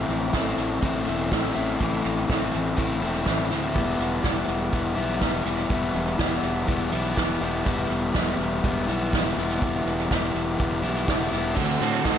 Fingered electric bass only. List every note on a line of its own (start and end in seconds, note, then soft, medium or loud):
0.09 0.32 A1 medium
0.34 0.56 A1 medium
0.58 0.81 A1 medium
0.83 1.05 A1 medium
1.08 1.30 E1 medium
1.32 1.54 A1 medium
1.57 1.79 A1 medium
1.81 2.03 A1 medium
2.05 2.28 A1 medium
2.30 2.52 A1 medium
2.55 2.77 A1 medium
2.78 3.01 A1 medium
3.02 3.25 E1 medium
3.27 3.49 A1 medium
3.52 3.78 D2 medium
3.76 3.98 E1 medium
4.00 4.22 E1 medium
4.24 4.47 E1 medium
4.48 4.71 E1 medium
4.73 4.96 E1 medium
4.97 5.20 B1 medium
5.22 5.44 E1 medium
5.45 5.68 E1 medium
5.70 5.93 E1 medium
5.95 6.17 E1 medium
6.19 6.42 E1 medium
6.43 6.66 E1 medium
6.68 6.91 E1 medium
6.92 7.15 B1 medium
7.17 7.40 E1 medium
7.41 7.64 E1 medium
7.67 7.89 E1 medium
7.90 8.13 E1 medium
8.15 8.37 E1 medium
8.39 8.61 E1 medium
8.64 8.86 E1 medium
8.89 9.11 B1 medium
9.14 9.36 E1 medium
9.36 9.59 E1 medium
9.62 9.84 E1 medium
9.86 10.08 E1 medium
10.11 10.33 E1 medium
10.35 10.57 E1 medium
10.60 10.82 E1 medium
10.82 11.05 B1 medium
11.09 11.31 E1 medium
11.32 11.59 E1 medium
11.57 11.75 D2 medium
11.81 11.99 A2 medium
12.06 12.18 D2 medium